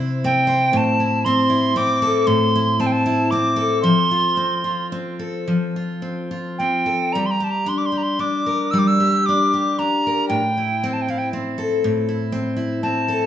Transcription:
0.00 0.73 C3 medium
0.00 0.24 C4 soft
0.00 1.00 E4 soft
0.00 0.47 C5 soft
0.24 1.26 C4 soft
0.24 0.79 G5 medium
0.47 2.02 C5 soft
0.73 2.26 A2 medium
0.77 1.26 A5 medium
1.00 1.48 E4 soft
1.25 1.75 C4 medium
1.25 1.79 C6 medium
1.50 2.54 E4 soft
1.76 2.79 C4 medium
1.76 2.21 D6 medium
2.02 3.56 A4 medium
2.21 2.28 D6 medium
2.27 3.94 A2 medium
2.27 2.82 C6 medium
2.56 3.05 E4 soft
2.80 3.32 C4 medium
2.80 2.88 A5 medium
2.87 2.94 G5 medium
2.92 3.32 A5 medium
3.06 3.95 E4 soft
3.31 4.37 C4 soft
3.31 3.82 D6 medium
3.56 5.19 A4 soft
3.82 5.46 F3 medium
3.82 4.87 C6 medium
4.11 4.63 F4 soft
4.37 4.91 C4 soft
4.64 5.75 F4 soft
4.92 6.01 C4 soft
5.19 6.85 A4 soft
5.48 7.23 F3 soft
5.76 6.30 F4 soft
6.02 6.58 C4 soft
6.31 7.23 F4 soft
6.58 7.24 C4 soft
6.58 7.14 G5 medium
6.86 7.24 A4 soft
7.13 8.72 G3 medium
7.13 7.28 A#5 medium
7.26 7.32 C6 soft
7.31 7.46 A#5 medium
7.40 7.91 G4 soft
7.44 7.52 A5 soft
7.51 7.70 A#5 medium
7.66 8.18 D4 soft
7.66 7.79 C6 medium
7.78 7.87 D6 soft
7.86 7.99 C6 medium
7.92 8.99 G4 soft
7.98 8.04 A#5 soft
8.03 8.22 C6 medium
8.19 9.25 D4 soft
8.19 8.72 D6 medium
8.46 10.03 A#4 soft
8.71 10.39 G3 medium
8.71 8.80 E6 medium
8.79 8.89 D6 medium
8.87 9.27 E6 medium
9.00 9.51 G4 soft
9.26 9.78 D4 soft
9.26 9.80 D6 medium
9.54 10.40 G4 soft
9.79 10.40 D4 soft
9.79 10.28 A#5 medium
10.07 10.41 A#4 soft
10.29 11.82 A2 medium
10.29 10.95 G5 medium
10.57 11.07 E4 soft
10.84 11.33 C4 soft
10.93 11.03 A5 medium
11.02 11.12 G5 soft
11.08 12.07 E4 soft
11.08 11.20 F5 soft
11.18 11.29 G5 medium
11.33 12.32 C4 soft
11.58 13.08 A4 soft
11.84 13.26 A2 medium
12.09 12.55 E4 soft
12.32 12.83 C4 soft
12.56 13.26 E4 soft
12.83 13.26 C4 soft
12.83 13.26 A5 medium
13.08 13.26 A4 medium

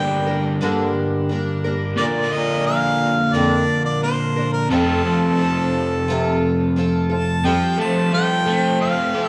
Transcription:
0.00 1.95 G2 medium
0.00 1.95 D3 medium
0.00 0.26 G3 medium
0.00 0.45 G3 medium
0.00 1.95 G3 medium
0.00 0.27 A#3 medium
0.00 1.96 A#3 medium
0.00 0.26 D4 medium
0.00 1.96 D4 medium
0.00 1.96 G4 medium
0.00 0.25 A#4 medium
0.00 0.57 G5 loud
0.26 0.61 G3 soft
0.26 0.61 A#3 soft
0.26 0.61 D4 soft
0.26 0.61 A#4 medium
0.61 1.29 G2 medium
0.61 0.90 D3 medium
0.61 1.29 D3 medium
0.61 1.28 G3 medium
0.61 1.30 A#3 medium
0.61 1.30 D4 medium
0.61 1.30 A#4 medium
1.29 1.63 G3 medium
1.29 1.64 A#3 medium
1.29 1.64 D4 medium
1.29 1.63 A#4 medium
1.64 1.98 G3 medium
1.64 1.98 A#3 medium
1.64 1.99 D4 medium
1.64 1.98 A#4 medium
1.96 4.68 A#2 medium
1.96 2.66 A#2 medium
1.96 2.26 A#2 medium
1.96 4.68 D3 medium
1.96 2.66 D3 medium
1.96 2.65 F3 medium
1.96 4.69 A#3 medium
1.96 2.66 A#3 medium
1.96 4.69 D4 medium
1.96 4.72 F4 loud
1.96 2.67 A#4 medium
1.96 2.34 D5 loud
2.32 3.18 A#2 medium
2.32 2.66 D#5 medium
2.65 3.34 F3 medium
2.65 3.34 A#3 medium
2.65 3.34 D4 medium
2.65 3.35 A#4 medium
2.65 3.35 F5 loud
3.33 3.62 F2 medium
3.33 4.02 A#2 medium
3.33 4.02 D3 medium
3.33 4.02 F3 medium
3.33 4.02 A#3 medium
3.33 4.03 D4 medium
3.33 4.03 A#4 medium
3.33 3.84 D5 medium
3.85 4.01 D5 medium
4.02 4.36 F3 medium
4.02 4.37 A#3 medium
4.02 4.36 D4 medium
4.02 4.35 A#4 medium
4.02 4.51 C5 medium
4.36 4.69 F3 soft
4.36 4.71 A#3 medium
4.36 4.71 D4 medium
4.36 4.71 A#4 medium
4.53 4.69 A#4 medium
4.69 7.41 F2 medium
4.69 5.00 F2 medium
4.69 7.42 C3 medium
4.69 5.38 F3 medium
4.69 7.42 F3 medium
4.69 7.42 A3 medium
4.69 5.39 C4 medium
4.69 7.43 C4 medium
4.69 5.40 F4 medium
4.69 7.43 F4 medium
4.69 6.72 A4 medium
4.69 5.40 A4 medium
5.05 5.91 F3 medium
5.39 6.07 F3 soft
5.39 6.08 C4 soft
5.39 6.09 F4 medium
5.39 6.09 A4 medium
6.07 6.36 C3 medium
6.07 6.75 F3 medium
6.07 6.76 C4 medium
6.07 6.77 F4 medium
6.11 6.78 A4 medium
6.76 7.10 F3 medium
6.76 7.11 C4 medium
6.76 7.10 F4 medium
6.76 7.08 A4 medium
7.10 7.45 C4 soft
7.10 7.45 F4 medium
7.10 7.44 A4 medium
7.10 7.49 A5 medium
7.44 7.58 F2 medium
7.44 8.11 F3 medium
7.44 7.79 F3 medium
7.44 7.79 G3 medium
7.44 7.79 C4 medium
7.44 7.78 F4 medium
7.44 7.76 A4 medium
7.44 7.80 G5 medium
7.77 9.22 F3 medium
7.77 8.45 A3 medium
7.77 8.12 C4 soft
7.77 8.13 F4 soft
7.77 8.12 A4 soft
7.77 8.12 A5 medium
8.12 9.28 F3 medium
8.12 8.46 G3 soft
8.12 8.47 C4 medium
8.12 8.46 F4 medium
8.12 8.44 A4 medium
8.12 8.78 G5 medium
8.46 9.28 A3 medium
8.46 9.16 C4 soft
8.46 9.15 F4 soft
8.46 9.12 A4 soft
8.80 9.28 C4 medium
8.80 9.28 F5 medium
9.14 9.28 C4 soft
9.14 9.28 F4 soft
9.14 9.28 G4 medium
9.14 9.28 A4 soft

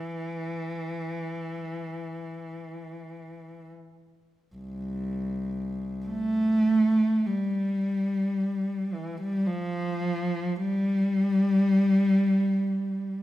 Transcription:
0.00 3.70 E3 medium
4.56 6.03 C2 soft
6.07 7.28 A3 medium
7.27 8.95 G3 medium
8.94 9.22 E3 medium
9.21 9.48 G3 medium
9.47 10.57 F3 medium
10.56 13.23 G3 medium

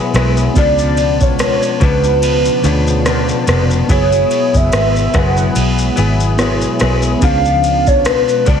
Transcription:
0.00 8.60 B2 medium
0.00 0.13 F#3 medium
0.00 0.53 F#3 medium
0.00 3.85 G#3 medium
0.00 0.14 B3 medium
0.00 8.60 B3 medium
0.00 0.15 E4 medium
0.00 0.53 E4 medium
0.00 0.16 G#4 medium
0.00 0.15 B4 loud
0.14 0.47 B1 medium
0.14 0.56 F#3 medium
0.14 0.57 B3 medium
0.14 0.57 E4 medium
0.14 0.57 G#4 medium
0.14 cross-stick medium
0.14 ride soft
0.14 shaker medium
0.37 shaker medium
0.54 1.58 C#2 loud
0.54 0.79 C#3 medium
0.54 0.79 F3 medium
0.54 3.86 F3 medium
0.54 2.59 B3 medium
0.54 2.59 D4 medium
0.54 2.60 F4 medium
0.54 3.86 F4 medium
0.54 2.61 G#4 medium
0.54 1.23 D5 loud
0.54 kick loud
0.54 ride medium
0.54 shaker medium
0.58 0.79 B3 medium
0.58 2.61 C#4 medium
0.58 0.78 D4 medium
0.79 1.80 F3 soft
0.79 1.82 B3 medium
0.79 1.81 D4 medium
0.79 shaker medium
0.97 ride soft
0.97 shaker soft
1.21 1.39 C#5 loud
1.21 kick loud
1.21 shaker medium
1.39 1.83 C#5 loud
1.39 cross-stick loud
1.39 ride medium
1.39 shaker medium
1.63 shaker soft
1.80 2.48 C#2 loud
1.80 2.62 C#3 medium
1.80 2.63 F3 medium
1.80 2.65 B3 medium
1.80 2.65 D4 medium
1.80 3.47 B4 loud
1.80 kick loud
1.80 ride soft
1.80 shaker medium
2.04 shaker soft
2.23 ride medium
2.23 shaker medium
2.45 shaker medium
2.63 3.30 D2 loud
2.63 3.04 C#3 medium
2.63 3.05 F3 medium
2.63 3.86 B3 soft
2.63 3.06 B3 medium
2.63 3.89 D4 soft
2.63 3.07 D4 medium
2.63 3.89 F4 soft
2.63 3.89 G#4 soft
2.63 3.90 C#5 medium
2.63 ride soft
2.63 shaker soft
2.87 shaker medium
3.05 3.45 C#3 medium
3.05 3.46 F3 medium
3.05 3.47 B3 medium
3.05 3.48 D4 medium
3.05 cross-stick medium
3.05 ride medium
3.05 shaker medium
3.29 shaker medium
3.47 3.81 F1 loud
3.47 3.88 C#3 medium
3.47 3.89 F3 medium
3.47 3.89 B3 medium
3.47 3.90 D4 medium
3.47 cross-stick medium
3.47 ride soft
3.47 shaker medium
3.71 shaker medium
3.87 4.22 F#1 loud
3.87 4.12 F#3 medium
3.87 7.20 F#3 medium
3.87 8.60 G#3 medium
3.87 6.34 B3 medium
3.87 4.12 B3 medium
3.87 6.34 E4 medium
3.87 7.19 E4 medium
3.87 4.12 E4 medium
3.87 6.35 F#4 medium
3.87 6.35 G#4 medium
3.87 4.11 G#4 medium
3.87 4.58 C#5 medium
3.87 kick loud
3.87 ride medium
3.87 shaker medium
3.92 6.36 C#5 medium
4.12 5.14 B3 soft
4.12 5.14 E4 medium
4.12 5.16 G#4 medium
4.12 shaker medium
4.31 ride soft
4.31 shaker soft
4.54 4.69 F#1 loud
4.54 4.74 E5 medium
4.54 kick loud
4.54 shaker medium
4.73 5.06 G#1 medium
4.73 5.19 E5 loud
4.73 cross-stick loud
4.73 ride medium
4.73 shaker medium
4.96 shaker medium
5.14 5.48 F#1 loud
5.14 5.95 F#3 medium
5.14 5.97 B3 medium
5.14 5.97 E4 medium
5.14 5.98 G#4 medium
5.14 5.99 F#5 loud
5.14 kick loud
5.14 cross-stick loud
5.14 ride soft
5.14 shaker soft
5.37 shaker soft
5.55 5.89 B1 medium
5.55 ride medium
5.55 shaker medium
5.79 shaker medium
5.96 6.64 G#1 medium
5.96 6.37 F#3 medium
5.96 6.39 B3 medium
5.96 6.39 E4 medium
5.96 6.39 G#4 medium
5.96 ride soft
5.96 shaker medium
6.20 shaker medium
6.37 6.79 F#3 medium
6.37 7.19 B3 medium
6.37 6.80 B3 medium
6.37 7.22 E4 medium
6.37 6.81 E4 medium
6.37 7.22 F#4 medium
6.37 7.22 G#4 medium
6.37 7.22 C#5 medium
6.37 cross-stick medium
6.37 ride medium
6.37 shaker medium
6.41 6.82 G#4 medium
6.62 shaker medium
6.80 7.14 B1 medium
6.80 7.22 F#3 medium
6.80 7.22 B3 medium
6.80 7.23 E4 medium
6.80 7.23 G#4 medium
6.80 cross-stick medium
6.80 ride soft
6.80 shaker medium
7.02 shaker medium
7.20 8.24 C#2 loud
7.20 7.45 C#3 medium
7.20 7.45 F3 medium
7.20 8.60 F3 medium
7.20 8.60 B3 medium
7.20 7.45 B3 medium
7.20 8.60 D4 medium
7.20 7.43 D4 medium
7.20 8.60 F4 medium
7.20 8.60 D5 medium
7.20 7.89 F5 loud
7.20 kick loud
7.20 ride medium
7.20 shaker medium
7.24 8.60 C#4 medium
7.24 8.60 G#4 medium
7.45 8.45 F3 soft
7.45 8.48 B3 medium
7.45 8.47 D4 medium
7.45 shaker medium
7.64 ride soft
7.64 shaker soft
7.87 8.08 C#5 loud
7.87 kick loud
7.87 shaker medium
8.05 8.49 B4 loud
8.05 cross-stick loud
8.05 ride medium
8.05 shaker medium
8.29 shaker medium
8.45 8.60 C#2 loud
8.45 8.60 C#3 medium
8.45 8.60 F3 medium
8.45 8.60 B3 medium
8.45 8.60 D4 medium
8.45 8.60 D5 loud
8.45 kick loud
8.45 ride soft
8.45 shaker soft

